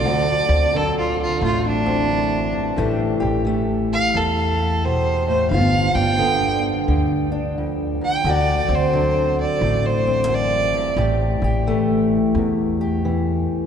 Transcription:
0.00 0.73 D3 medium
0.00 0.73 F#3 medium
0.00 0.77 D5 loud
0.05 2.09 D2 medium
0.05 0.40 D2 loud
0.05 2.75 F#4 medium
0.49 1.23 D2 medium
0.49 1.85 C4 medium
0.74 2.77 D3 medium
0.74 2.78 F#3 medium
0.74 0.96 A4 medium
0.98 1.19 F4 medium
1.22 1.42 F4 medium
1.41 2.51 A1 medium
1.41 2.75 A2 medium
1.41 1.64 F4 medium
1.67 2.98 D4 loud
1.86 2.76 C4 medium
2.09 2.53 F#2 medium
2.53 2.78 G2 medium
2.76 3.13 A1 medium
2.76 4.14 A2 medium
2.76 3.44 E3 medium
2.76 3.45 A3 medium
2.76 3.20 G4 medium
3.20 3.97 A1 medium
3.20 4.58 G4 medium
3.45 5.48 E3 medium
3.45 5.49 A3 medium
3.93 4.18 F5 loud
4.14 5.48 E2 medium
4.14 5.53 E2 medium
4.14 4.86 A4 medium
4.59 5.48 G4 medium
4.85 5.27 B2 medium
4.85 5.26 C5 medium
5.27 5.52 A2 medium
5.27 5.49 C5 medium
5.50 5.87 G1 loud
5.50 7.57 G2 medium
5.50 5.96 F5 loud
5.54 8.23 F4 medium
5.95 6.70 G1 medium
5.95 7.31 D4 medium
5.95 6.61 G5 loud
6.19 6.87 D3 medium
6.19 8.21 B3 medium
6.88 7.98 D2 medium
6.88 8.22 D3 medium
7.32 8.22 D4 medium
7.58 8.01 F2 medium
8.01 8.25 E2 medium
8.06 8.31 G5 medium
8.24 8.60 D2 loud
8.24 10.27 D2 medium
8.24 10.96 F#4 medium
8.30 8.76 D5 loud
8.68 9.43 D2 medium
8.68 10.05 C4 medium
8.74 9.39 C5 medium
8.93 10.98 D3 medium
8.93 10.98 F#3 medium
9.41 9.87 D5 medium
9.61 10.71 A1 loud
9.61 10.96 A2 medium
9.86 10.35 C5 medium
10.07 10.96 C4 medium
10.27 10.72 F#2 medium
10.34 10.98 D5 loud
10.73 10.98 G2 medium
10.96 11.32 A1 loud
10.96 12.34 A2 medium
10.96 11.42 G4 medium
11.42 12.17 A1 medium
11.42 12.80 G4 medium
11.67 13.04 E3 medium
11.67 13.66 A3 medium
12.35 13.45 E2 medium
12.35 13.66 E2 medium
12.81 13.66 G4 medium
13.05 13.66 E3 medium

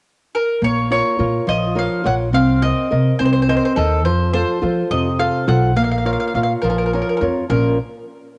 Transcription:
0.35 0.61 A#4 medium
0.62 1.00 A#1 medium
0.62 1.18 A#3 soft
0.62 0.91 C#5 medium
0.91 1.18 F4 soft
0.91 1.18 A#4 soft
0.91 1.19 C#5 soft
0.91 1.48 C#5 medium
1.19 1.38 A#2 medium
1.19 1.65 F4 soft
1.19 1.66 A#4 soft
1.19 1.66 C#5 soft
1.47 1.86 A#1 medium
1.47 2.04 F3 medium
1.47 1.76 D#5 medium
1.75 2.03 F4 soft
1.75 2.04 A#4 soft
1.75 2.04 C#5 soft
1.75 2.05 F5 medium
2.04 2.34 A#1 medium
2.04 2.27 F4 soft
2.04 2.28 A#4 soft
2.04 2.28 C#5 soft
2.04 2.14 F#5 medium
2.33 2.71 C2 medium
2.33 2.89 C4 medium
2.33 2.61 F5 medium
2.62 2.90 A#4 soft
2.62 2.90 C5 soft
2.62 3.15 D#5 loud
2.62 2.90 D#5 medium
2.91 3.10 C3 medium
2.91 3.37 A#4 soft
2.91 3.37 C5 soft
2.91 3.37 D#5 medium
3.19 3.57 C2 medium
3.19 3.75 C4 medium
3.19 3.24 C5 medium
3.25 3.32 C5 medium
3.33 3.41 C5 medium
3.42 3.48 C5 medium
3.48 3.75 A#4 soft
3.48 3.75 C5 soft
3.48 3.55 C5 medium
3.48 3.76 D#5 soft
3.57 3.64 C5 medium
3.65 3.72 C5 medium
3.76 4.06 D#2 medium
3.76 4.03 A4 medium
3.76 3.99 A#4 soft
3.76 3.99 C5 soft
3.76 4.00 D#5 soft
4.05 4.43 F2 medium
4.05 4.61 F3 medium
4.05 4.32 C5 medium
4.33 4.60 F4 soft
4.33 4.61 A4 soft
4.33 4.91 C5 medium
4.33 4.61 C5 medium
4.62 4.81 F3 medium
4.62 5.08 F4 soft
4.62 5.08 A4 soft
4.62 5.08 C5 soft
4.91 5.28 F2 medium
4.91 5.47 C3 medium
4.91 5.21 D#5 medium
5.19 5.46 F4 soft
5.19 5.47 A4 soft
5.19 5.47 C5 soft
5.19 5.48 F5 medium
5.47 5.77 B1 loud
5.47 5.71 F4 soft
5.47 5.71 A4 soft
5.47 5.71 C5 soft
5.47 5.75 F#5 medium
5.76 6.14 A#1 medium
5.76 6.32 A#3 medium
5.76 5.83 F5 medium
5.84 5.90 F5 medium
5.92 5.97 F5 medium
5.98 6.05 F5 soft
6.05 6.34 F4 soft
6.05 6.34 A#4 soft
6.05 6.35 C#5 medium
6.05 6.12 F5 medium
6.13 6.19 F5 soft
6.20 6.26 F5 medium
6.28 6.34 F5 soft
6.34 6.53 A#2 medium
6.34 6.81 F4 soft
6.34 6.81 A#4 soft
6.34 6.82 C#5 soft
6.34 6.42 F5 medium
6.43 6.52 F5 medium
6.62 7.00 A#1 medium
6.62 7.19 F3 medium
6.62 6.68 A#4 medium
6.70 6.77 A#4 soft
6.78 6.85 A#4 soft
6.86 6.92 A#4 soft
6.93 7.20 F4 soft
6.93 7.01 A#4 soft
6.93 7.21 A#4 soft
6.93 7.21 C#5 soft
7.02 7.08 A#4 soft
7.09 7.16 A#4 soft
7.17 7.24 A#4 soft
7.21 7.39 F2 medium
7.21 7.44 F4 soft
7.21 7.44 A#4 soft
7.21 7.44 C#5 soft
7.49 7.76 A#1 medium
7.49 7.76 A#2 soft
7.49 7.76 F3 soft
7.49 7.77 A#3 soft
7.49 7.77 C#4 soft
7.49 7.77 F4 soft
7.49 7.76 A#4 medium

